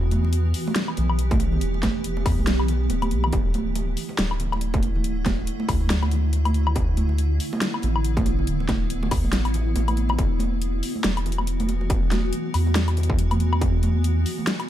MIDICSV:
0, 0, Header, 1, 4, 480
1, 0, Start_track
1, 0, Key_signature, 1, "minor"
1, 0, Tempo, 428571
1, 1809, Time_signature, 4, 2, 24, 8
1, 16458, End_track
2, 0, Start_track
2, 0, Title_t, "Ambient pad"
2, 0, Program_c, 0, 92
2, 0, Note_on_c, 0, 52, 80
2, 0, Note_on_c, 0, 59, 71
2, 0, Note_on_c, 0, 67, 88
2, 3682, Note_off_c, 0, 52, 0
2, 3683, Note_off_c, 0, 59, 0
2, 3690, Note_off_c, 0, 67, 0
2, 3729, Note_on_c, 0, 64, 86
2, 3730, Note_on_c, 0, 50, 79
2, 3730, Note_on_c, 0, 57, 73
2, 7531, Note_off_c, 0, 57, 0
2, 7571, Note_on_c, 0, 59, 73
2, 11364, Note_off_c, 0, 50, 0
2, 11364, Note_off_c, 0, 64, 0
2, 11371, Note_off_c, 0, 59, 0
2, 11409, Note_on_c, 0, 66, 86
2, 11410, Note_on_c, 0, 52, 79
2, 11410, Note_on_c, 0, 59, 73
2, 16458, Note_off_c, 0, 52, 0
2, 16458, Note_off_c, 0, 59, 0
2, 16458, Note_off_c, 0, 66, 0
2, 16458, End_track
3, 0, Start_track
3, 0, Title_t, "Sub bass"
3, 0, Program_c, 1, 38
3, 0, Note_on_c, 1, 40, 88
3, 596, Note_off_c, 1, 40, 0
3, 1092, Note_on_c, 1, 35, 82
3, 1797, Note_off_c, 1, 35, 0
3, 1810, Note_on_c, 1, 28, 102
3, 2517, Note_off_c, 1, 28, 0
3, 2527, Note_on_c, 1, 40, 87
3, 2657, Note_off_c, 1, 40, 0
3, 2669, Note_on_c, 1, 35, 82
3, 3240, Note_off_c, 1, 35, 0
3, 3247, Note_on_c, 1, 26, 97
3, 3487, Note_on_c, 1, 35, 103
3, 3504, Note_off_c, 1, 26, 0
3, 3712, Note_off_c, 1, 35, 0
3, 3726, Note_on_c, 1, 26, 103
3, 4435, Note_off_c, 1, 26, 0
3, 4687, Note_on_c, 1, 26, 86
3, 6115, Note_off_c, 1, 26, 0
3, 6367, Note_on_c, 1, 38, 89
3, 8275, Note_off_c, 1, 38, 0
3, 8769, Note_on_c, 1, 33, 82
3, 9476, Note_off_c, 1, 33, 0
3, 9487, Note_on_c, 1, 26, 101
3, 10195, Note_off_c, 1, 26, 0
3, 10209, Note_on_c, 1, 38, 87
3, 10337, Note_off_c, 1, 38, 0
3, 10346, Note_on_c, 1, 33, 83
3, 10920, Note_off_c, 1, 33, 0
3, 10927, Note_on_c, 1, 33, 97
3, 11395, Note_off_c, 1, 33, 0
3, 11408, Note_on_c, 1, 28, 99
3, 12115, Note_off_c, 1, 28, 0
3, 12366, Note_on_c, 1, 28, 87
3, 13795, Note_off_c, 1, 28, 0
3, 14046, Note_on_c, 1, 40, 85
3, 15954, Note_off_c, 1, 40, 0
3, 16458, End_track
4, 0, Start_track
4, 0, Title_t, "Drums"
4, 128, Note_on_c, 9, 42, 55
4, 134, Note_on_c, 9, 63, 88
4, 240, Note_off_c, 9, 42, 0
4, 246, Note_off_c, 9, 63, 0
4, 275, Note_on_c, 9, 62, 51
4, 366, Note_on_c, 9, 42, 86
4, 387, Note_off_c, 9, 62, 0
4, 478, Note_off_c, 9, 42, 0
4, 605, Note_on_c, 9, 46, 89
4, 717, Note_off_c, 9, 46, 0
4, 751, Note_on_c, 9, 63, 67
4, 756, Note_on_c, 9, 62, 82
4, 847, Note_on_c, 9, 38, 127
4, 847, Note_on_c, 9, 42, 83
4, 863, Note_off_c, 9, 63, 0
4, 868, Note_off_c, 9, 62, 0
4, 959, Note_off_c, 9, 38, 0
4, 959, Note_off_c, 9, 42, 0
4, 988, Note_on_c, 9, 77, 52
4, 1088, Note_on_c, 9, 42, 63
4, 1090, Note_on_c, 9, 62, 55
4, 1094, Note_on_c, 9, 64, 77
4, 1100, Note_off_c, 9, 77, 0
4, 1200, Note_off_c, 9, 42, 0
4, 1202, Note_off_c, 9, 62, 0
4, 1206, Note_off_c, 9, 64, 0
4, 1226, Note_on_c, 9, 77, 59
4, 1329, Note_on_c, 9, 42, 83
4, 1338, Note_off_c, 9, 77, 0
4, 1441, Note_off_c, 9, 42, 0
4, 1469, Note_on_c, 9, 36, 113
4, 1469, Note_on_c, 9, 42, 39
4, 1472, Note_on_c, 9, 63, 99
4, 1564, Note_on_c, 9, 62, 75
4, 1567, Note_off_c, 9, 42, 0
4, 1567, Note_on_c, 9, 42, 57
4, 1581, Note_off_c, 9, 36, 0
4, 1584, Note_off_c, 9, 63, 0
4, 1676, Note_off_c, 9, 62, 0
4, 1679, Note_off_c, 9, 42, 0
4, 1706, Note_on_c, 9, 64, 91
4, 1807, Note_on_c, 9, 42, 82
4, 1818, Note_off_c, 9, 64, 0
4, 1919, Note_off_c, 9, 42, 0
4, 1951, Note_on_c, 9, 62, 49
4, 2045, Note_on_c, 9, 63, 102
4, 2048, Note_on_c, 9, 36, 65
4, 2049, Note_on_c, 9, 38, 67
4, 2049, Note_on_c, 9, 42, 54
4, 2063, Note_off_c, 9, 62, 0
4, 2157, Note_off_c, 9, 63, 0
4, 2160, Note_off_c, 9, 36, 0
4, 2161, Note_off_c, 9, 38, 0
4, 2161, Note_off_c, 9, 42, 0
4, 2288, Note_on_c, 9, 42, 81
4, 2400, Note_off_c, 9, 42, 0
4, 2428, Note_on_c, 9, 62, 80
4, 2528, Note_on_c, 9, 36, 115
4, 2528, Note_on_c, 9, 46, 86
4, 2528, Note_on_c, 9, 77, 51
4, 2540, Note_off_c, 9, 62, 0
4, 2640, Note_off_c, 9, 36, 0
4, 2640, Note_off_c, 9, 46, 0
4, 2640, Note_off_c, 9, 77, 0
4, 2678, Note_on_c, 9, 63, 72
4, 2762, Note_on_c, 9, 62, 55
4, 2767, Note_on_c, 9, 38, 126
4, 2767, Note_on_c, 9, 42, 79
4, 2790, Note_off_c, 9, 63, 0
4, 2874, Note_off_c, 9, 62, 0
4, 2879, Note_off_c, 9, 38, 0
4, 2879, Note_off_c, 9, 42, 0
4, 2907, Note_on_c, 9, 77, 52
4, 3006, Note_on_c, 9, 42, 62
4, 3009, Note_on_c, 9, 64, 82
4, 3019, Note_off_c, 9, 77, 0
4, 3118, Note_off_c, 9, 42, 0
4, 3121, Note_off_c, 9, 64, 0
4, 3245, Note_on_c, 9, 42, 80
4, 3245, Note_on_c, 9, 62, 75
4, 3357, Note_off_c, 9, 42, 0
4, 3357, Note_off_c, 9, 62, 0
4, 3384, Note_on_c, 9, 42, 37
4, 3384, Note_on_c, 9, 63, 91
4, 3384, Note_on_c, 9, 77, 61
4, 3485, Note_off_c, 9, 42, 0
4, 3485, Note_on_c, 9, 42, 55
4, 3496, Note_off_c, 9, 63, 0
4, 3496, Note_off_c, 9, 77, 0
4, 3597, Note_off_c, 9, 42, 0
4, 3625, Note_on_c, 9, 62, 56
4, 3627, Note_on_c, 9, 77, 81
4, 3628, Note_on_c, 9, 64, 84
4, 3723, Note_off_c, 9, 62, 0
4, 3723, Note_on_c, 9, 62, 48
4, 3724, Note_on_c, 9, 42, 78
4, 3727, Note_on_c, 9, 36, 123
4, 3739, Note_off_c, 9, 77, 0
4, 3740, Note_off_c, 9, 64, 0
4, 3835, Note_off_c, 9, 62, 0
4, 3836, Note_off_c, 9, 42, 0
4, 3839, Note_off_c, 9, 36, 0
4, 3966, Note_on_c, 9, 42, 52
4, 3974, Note_on_c, 9, 63, 95
4, 4078, Note_off_c, 9, 42, 0
4, 4086, Note_off_c, 9, 63, 0
4, 4205, Note_on_c, 9, 42, 79
4, 4205, Note_on_c, 9, 62, 72
4, 4317, Note_off_c, 9, 42, 0
4, 4317, Note_off_c, 9, 62, 0
4, 4445, Note_on_c, 9, 46, 85
4, 4557, Note_off_c, 9, 46, 0
4, 4580, Note_on_c, 9, 62, 55
4, 4587, Note_on_c, 9, 63, 66
4, 4687, Note_on_c, 9, 38, 119
4, 4687, Note_on_c, 9, 42, 77
4, 4692, Note_off_c, 9, 62, 0
4, 4699, Note_off_c, 9, 63, 0
4, 4799, Note_off_c, 9, 38, 0
4, 4799, Note_off_c, 9, 42, 0
4, 4827, Note_on_c, 9, 77, 53
4, 4925, Note_on_c, 9, 42, 60
4, 4927, Note_on_c, 9, 64, 74
4, 4939, Note_off_c, 9, 77, 0
4, 5037, Note_off_c, 9, 42, 0
4, 5039, Note_off_c, 9, 64, 0
4, 5066, Note_on_c, 9, 77, 61
4, 5074, Note_on_c, 9, 62, 74
4, 5165, Note_on_c, 9, 42, 78
4, 5178, Note_off_c, 9, 77, 0
4, 5186, Note_off_c, 9, 62, 0
4, 5277, Note_off_c, 9, 42, 0
4, 5306, Note_on_c, 9, 42, 37
4, 5307, Note_on_c, 9, 36, 108
4, 5312, Note_on_c, 9, 63, 89
4, 5405, Note_off_c, 9, 42, 0
4, 5405, Note_on_c, 9, 42, 52
4, 5413, Note_on_c, 9, 62, 48
4, 5419, Note_off_c, 9, 36, 0
4, 5424, Note_off_c, 9, 63, 0
4, 5517, Note_off_c, 9, 42, 0
4, 5525, Note_off_c, 9, 62, 0
4, 5551, Note_on_c, 9, 64, 74
4, 5647, Note_on_c, 9, 42, 76
4, 5663, Note_off_c, 9, 64, 0
4, 5759, Note_off_c, 9, 42, 0
4, 5887, Note_on_c, 9, 36, 60
4, 5888, Note_on_c, 9, 38, 61
4, 5888, Note_on_c, 9, 42, 52
4, 5893, Note_on_c, 9, 62, 84
4, 5893, Note_on_c, 9, 63, 86
4, 5999, Note_off_c, 9, 36, 0
4, 6000, Note_off_c, 9, 38, 0
4, 6000, Note_off_c, 9, 42, 0
4, 6005, Note_off_c, 9, 62, 0
4, 6005, Note_off_c, 9, 63, 0
4, 6129, Note_on_c, 9, 42, 76
4, 6241, Note_off_c, 9, 42, 0
4, 6268, Note_on_c, 9, 62, 58
4, 6367, Note_on_c, 9, 36, 101
4, 6369, Note_on_c, 9, 46, 92
4, 6369, Note_on_c, 9, 77, 54
4, 6380, Note_off_c, 9, 62, 0
4, 6479, Note_off_c, 9, 36, 0
4, 6481, Note_off_c, 9, 46, 0
4, 6481, Note_off_c, 9, 77, 0
4, 6504, Note_on_c, 9, 63, 66
4, 6610, Note_on_c, 9, 38, 116
4, 6610, Note_on_c, 9, 42, 79
4, 6616, Note_off_c, 9, 63, 0
4, 6722, Note_off_c, 9, 38, 0
4, 6722, Note_off_c, 9, 42, 0
4, 6748, Note_on_c, 9, 77, 55
4, 6751, Note_on_c, 9, 62, 78
4, 6848, Note_on_c, 9, 42, 59
4, 6860, Note_off_c, 9, 77, 0
4, 6860, Note_on_c, 9, 64, 72
4, 6863, Note_off_c, 9, 62, 0
4, 6960, Note_off_c, 9, 42, 0
4, 6972, Note_off_c, 9, 64, 0
4, 7088, Note_on_c, 9, 42, 77
4, 7088, Note_on_c, 9, 62, 52
4, 7200, Note_off_c, 9, 42, 0
4, 7200, Note_off_c, 9, 62, 0
4, 7228, Note_on_c, 9, 42, 36
4, 7228, Note_on_c, 9, 77, 66
4, 7232, Note_on_c, 9, 63, 91
4, 7329, Note_off_c, 9, 42, 0
4, 7329, Note_on_c, 9, 42, 52
4, 7340, Note_off_c, 9, 77, 0
4, 7344, Note_off_c, 9, 63, 0
4, 7441, Note_off_c, 9, 42, 0
4, 7466, Note_on_c, 9, 64, 85
4, 7468, Note_on_c, 9, 77, 85
4, 7565, Note_on_c, 9, 62, 73
4, 7568, Note_on_c, 9, 42, 79
4, 7569, Note_on_c, 9, 36, 115
4, 7578, Note_off_c, 9, 64, 0
4, 7580, Note_off_c, 9, 77, 0
4, 7677, Note_off_c, 9, 62, 0
4, 7680, Note_off_c, 9, 42, 0
4, 7681, Note_off_c, 9, 36, 0
4, 7808, Note_on_c, 9, 42, 53
4, 7808, Note_on_c, 9, 63, 93
4, 7920, Note_off_c, 9, 42, 0
4, 7920, Note_off_c, 9, 63, 0
4, 7942, Note_on_c, 9, 62, 55
4, 8047, Note_on_c, 9, 42, 79
4, 8054, Note_off_c, 9, 62, 0
4, 8159, Note_off_c, 9, 42, 0
4, 8288, Note_on_c, 9, 46, 96
4, 8400, Note_off_c, 9, 46, 0
4, 8431, Note_on_c, 9, 62, 83
4, 8437, Note_on_c, 9, 63, 59
4, 8529, Note_on_c, 9, 38, 119
4, 8529, Note_on_c, 9, 42, 80
4, 8543, Note_off_c, 9, 62, 0
4, 8549, Note_off_c, 9, 63, 0
4, 8641, Note_off_c, 9, 38, 0
4, 8641, Note_off_c, 9, 42, 0
4, 8670, Note_on_c, 9, 77, 58
4, 8762, Note_on_c, 9, 62, 57
4, 8771, Note_on_c, 9, 42, 63
4, 8777, Note_on_c, 9, 64, 81
4, 8782, Note_off_c, 9, 77, 0
4, 8874, Note_off_c, 9, 62, 0
4, 8883, Note_off_c, 9, 42, 0
4, 8889, Note_off_c, 9, 64, 0
4, 8911, Note_on_c, 9, 77, 65
4, 9010, Note_on_c, 9, 42, 79
4, 9023, Note_off_c, 9, 77, 0
4, 9122, Note_off_c, 9, 42, 0
4, 9149, Note_on_c, 9, 36, 105
4, 9150, Note_on_c, 9, 63, 97
4, 9152, Note_on_c, 9, 42, 36
4, 9250, Note_off_c, 9, 42, 0
4, 9250, Note_on_c, 9, 42, 53
4, 9250, Note_on_c, 9, 62, 81
4, 9261, Note_off_c, 9, 36, 0
4, 9262, Note_off_c, 9, 63, 0
4, 9362, Note_off_c, 9, 42, 0
4, 9362, Note_off_c, 9, 62, 0
4, 9395, Note_on_c, 9, 64, 75
4, 9489, Note_on_c, 9, 42, 82
4, 9507, Note_off_c, 9, 64, 0
4, 9601, Note_off_c, 9, 42, 0
4, 9635, Note_on_c, 9, 62, 56
4, 9728, Note_on_c, 9, 36, 62
4, 9729, Note_on_c, 9, 38, 60
4, 9729, Note_on_c, 9, 42, 56
4, 9730, Note_on_c, 9, 63, 84
4, 9747, Note_off_c, 9, 62, 0
4, 9840, Note_off_c, 9, 36, 0
4, 9841, Note_off_c, 9, 38, 0
4, 9841, Note_off_c, 9, 42, 0
4, 9842, Note_off_c, 9, 63, 0
4, 9969, Note_on_c, 9, 42, 84
4, 10081, Note_off_c, 9, 42, 0
4, 10110, Note_on_c, 9, 62, 90
4, 10206, Note_on_c, 9, 46, 98
4, 10206, Note_on_c, 9, 77, 55
4, 10208, Note_on_c, 9, 36, 101
4, 10222, Note_off_c, 9, 62, 0
4, 10318, Note_off_c, 9, 46, 0
4, 10318, Note_off_c, 9, 77, 0
4, 10320, Note_off_c, 9, 36, 0
4, 10349, Note_on_c, 9, 63, 67
4, 10446, Note_on_c, 9, 38, 115
4, 10446, Note_on_c, 9, 42, 83
4, 10450, Note_on_c, 9, 62, 56
4, 10461, Note_off_c, 9, 63, 0
4, 10558, Note_off_c, 9, 38, 0
4, 10558, Note_off_c, 9, 42, 0
4, 10562, Note_off_c, 9, 62, 0
4, 10585, Note_on_c, 9, 42, 39
4, 10585, Note_on_c, 9, 77, 56
4, 10686, Note_off_c, 9, 42, 0
4, 10686, Note_on_c, 9, 42, 63
4, 10693, Note_on_c, 9, 64, 86
4, 10697, Note_off_c, 9, 77, 0
4, 10798, Note_off_c, 9, 42, 0
4, 10805, Note_off_c, 9, 64, 0
4, 10927, Note_on_c, 9, 42, 83
4, 10929, Note_on_c, 9, 62, 89
4, 11039, Note_off_c, 9, 42, 0
4, 11041, Note_off_c, 9, 62, 0
4, 11066, Note_on_c, 9, 42, 38
4, 11066, Note_on_c, 9, 77, 65
4, 11068, Note_on_c, 9, 63, 88
4, 11167, Note_off_c, 9, 42, 0
4, 11167, Note_on_c, 9, 42, 56
4, 11178, Note_off_c, 9, 77, 0
4, 11180, Note_off_c, 9, 63, 0
4, 11279, Note_off_c, 9, 42, 0
4, 11302, Note_on_c, 9, 62, 55
4, 11302, Note_on_c, 9, 64, 87
4, 11309, Note_on_c, 9, 77, 84
4, 11408, Note_on_c, 9, 36, 118
4, 11408, Note_on_c, 9, 42, 85
4, 11414, Note_off_c, 9, 62, 0
4, 11414, Note_off_c, 9, 64, 0
4, 11421, Note_off_c, 9, 77, 0
4, 11520, Note_off_c, 9, 36, 0
4, 11520, Note_off_c, 9, 42, 0
4, 11641, Note_on_c, 9, 63, 98
4, 11649, Note_on_c, 9, 42, 55
4, 11753, Note_off_c, 9, 63, 0
4, 11761, Note_off_c, 9, 42, 0
4, 11889, Note_on_c, 9, 42, 85
4, 12001, Note_off_c, 9, 42, 0
4, 12128, Note_on_c, 9, 46, 93
4, 12240, Note_off_c, 9, 46, 0
4, 12268, Note_on_c, 9, 63, 70
4, 12367, Note_on_c, 9, 38, 119
4, 12367, Note_on_c, 9, 42, 82
4, 12380, Note_off_c, 9, 63, 0
4, 12479, Note_off_c, 9, 38, 0
4, 12479, Note_off_c, 9, 42, 0
4, 12511, Note_on_c, 9, 42, 39
4, 12511, Note_on_c, 9, 77, 55
4, 12608, Note_on_c, 9, 64, 76
4, 12610, Note_off_c, 9, 42, 0
4, 12610, Note_on_c, 9, 42, 52
4, 12623, Note_off_c, 9, 77, 0
4, 12680, Note_off_c, 9, 42, 0
4, 12680, Note_on_c, 9, 42, 68
4, 12720, Note_off_c, 9, 64, 0
4, 12750, Note_on_c, 9, 77, 61
4, 12756, Note_on_c, 9, 62, 52
4, 12792, Note_off_c, 9, 42, 0
4, 12849, Note_on_c, 9, 42, 84
4, 12862, Note_off_c, 9, 77, 0
4, 12868, Note_off_c, 9, 62, 0
4, 12961, Note_off_c, 9, 42, 0
4, 12990, Note_on_c, 9, 42, 38
4, 12992, Note_on_c, 9, 63, 97
4, 13089, Note_off_c, 9, 42, 0
4, 13089, Note_on_c, 9, 42, 57
4, 13093, Note_on_c, 9, 62, 65
4, 13104, Note_off_c, 9, 63, 0
4, 13201, Note_off_c, 9, 42, 0
4, 13205, Note_off_c, 9, 62, 0
4, 13227, Note_on_c, 9, 62, 66
4, 13327, Note_on_c, 9, 36, 127
4, 13328, Note_on_c, 9, 42, 85
4, 13339, Note_off_c, 9, 62, 0
4, 13439, Note_off_c, 9, 36, 0
4, 13440, Note_off_c, 9, 42, 0
4, 13568, Note_on_c, 9, 38, 67
4, 13568, Note_on_c, 9, 42, 56
4, 13574, Note_on_c, 9, 63, 98
4, 13680, Note_off_c, 9, 38, 0
4, 13680, Note_off_c, 9, 42, 0
4, 13686, Note_off_c, 9, 63, 0
4, 13805, Note_on_c, 9, 42, 85
4, 13917, Note_off_c, 9, 42, 0
4, 14046, Note_on_c, 9, 46, 93
4, 14046, Note_on_c, 9, 77, 51
4, 14158, Note_off_c, 9, 46, 0
4, 14158, Note_off_c, 9, 77, 0
4, 14184, Note_on_c, 9, 63, 65
4, 14191, Note_on_c, 9, 62, 53
4, 14285, Note_on_c, 9, 38, 126
4, 14285, Note_on_c, 9, 42, 85
4, 14296, Note_off_c, 9, 63, 0
4, 14303, Note_off_c, 9, 62, 0
4, 14397, Note_off_c, 9, 38, 0
4, 14397, Note_off_c, 9, 42, 0
4, 14425, Note_on_c, 9, 42, 40
4, 14425, Note_on_c, 9, 77, 51
4, 14527, Note_off_c, 9, 42, 0
4, 14527, Note_on_c, 9, 42, 53
4, 14533, Note_on_c, 9, 64, 87
4, 14537, Note_off_c, 9, 77, 0
4, 14597, Note_off_c, 9, 42, 0
4, 14597, Note_on_c, 9, 42, 70
4, 14645, Note_off_c, 9, 64, 0
4, 14667, Note_on_c, 9, 36, 114
4, 14709, Note_off_c, 9, 42, 0
4, 14768, Note_on_c, 9, 42, 86
4, 14779, Note_off_c, 9, 36, 0
4, 14880, Note_off_c, 9, 42, 0
4, 14909, Note_on_c, 9, 42, 40
4, 14909, Note_on_c, 9, 77, 61
4, 14912, Note_on_c, 9, 63, 96
4, 15008, Note_off_c, 9, 42, 0
4, 15008, Note_on_c, 9, 42, 58
4, 15021, Note_off_c, 9, 77, 0
4, 15024, Note_off_c, 9, 63, 0
4, 15120, Note_off_c, 9, 42, 0
4, 15149, Note_on_c, 9, 62, 66
4, 15149, Note_on_c, 9, 77, 77
4, 15248, Note_on_c, 9, 36, 127
4, 15250, Note_on_c, 9, 42, 84
4, 15261, Note_off_c, 9, 62, 0
4, 15261, Note_off_c, 9, 77, 0
4, 15360, Note_off_c, 9, 36, 0
4, 15362, Note_off_c, 9, 42, 0
4, 15487, Note_on_c, 9, 42, 56
4, 15493, Note_on_c, 9, 63, 98
4, 15599, Note_off_c, 9, 42, 0
4, 15605, Note_off_c, 9, 63, 0
4, 15728, Note_on_c, 9, 42, 84
4, 15840, Note_off_c, 9, 42, 0
4, 15970, Note_on_c, 9, 46, 91
4, 16082, Note_off_c, 9, 46, 0
4, 16110, Note_on_c, 9, 63, 68
4, 16208, Note_on_c, 9, 38, 127
4, 16208, Note_on_c, 9, 42, 83
4, 16222, Note_off_c, 9, 63, 0
4, 16320, Note_off_c, 9, 38, 0
4, 16320, Note_off_c, 9, 42, 0
4, 16348, Note_on_c, 9, 42, 39
4, 16348, Note_on_c, 9, 77, 52
4, 16458, Note_off_c, 9, 42, 0
4, 16458, Note_off_c, 9, 77, 0
4, 16458, End_track
0, 0, End_of_file